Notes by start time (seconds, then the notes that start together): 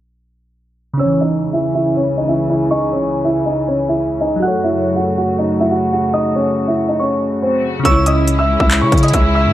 0.93 C#3 C#4
0.99 C#2 C#3 E3 C#4 C#5 E6
1.05 E3
1.21 D#4 D#5
1.53 E4 E5
1.74 E4 E5
1.96 C#4 C#5
2.17 D#4 D#5
2.28 E4 E5
2.49 E4 E5
2.71 D#4 D#5 C#6
2.92 C#4 C#5
3.24 E4 E5
3.46 D#4 D#5
3.67 C#4 C#5
3.89 E4 E5
4.21 D#4 D#5
4.36 F#3 F#4
4.42 F#2 C#3 A3 F#4 A4 F#5 F#6
4.48 C#5
4.64 E4 E5
4.96 F#4 F#5
5.17 F#4 F#5
5.39 D#4 D#5
5.60 E4 E5
5.71 F#4 F#5
5.92 F#4 F#5
6.14 D#4 D#5 D#6
6.35 C#4 C#5
6.67 E4 E5
6.89 D#4 D#5
6.99 C#4 C#5 C#6
7.42 C4 C5
7.79 C#3 C#4
7.85 C#2 C#3 G#3 C#4 E4 C#5 C#6 E6, kick, closed hi-hat
7.91 E4
8.06 D#5 D#6, closed hi-hat
8.28 closed hi-hat
8.39 E5 E6
8.60 C#2 E5 E6, kick
8.71 clap, closed hi-hat
8.81 C#3 C#5 C#6
8.92 C#3, kick, closed hi-hat
8.98 closed hi-hat
9.03 D#5 D#6, closed hi-hat
9.08 closed hi-hat
9.13 C#2 E5 E6, kick, closed hi-hat
9.35 E5 E6
9.46 G#2